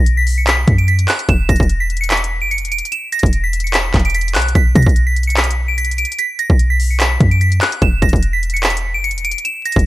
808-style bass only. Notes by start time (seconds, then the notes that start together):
Already playing: B1
0.68 F#2
1.29 E1
1.49 E1
1.60 E1
2.42 F#1
2.62 E1
3.23 E1
3.94 E1
4.35 B1
4.55 B1
4.75 B2
4.87 B1
6.50 B1
7.21 F#2
7.82 E1
8.02 E1
8.13 E1
8.95 F#1
9.15 E1
9.76 E1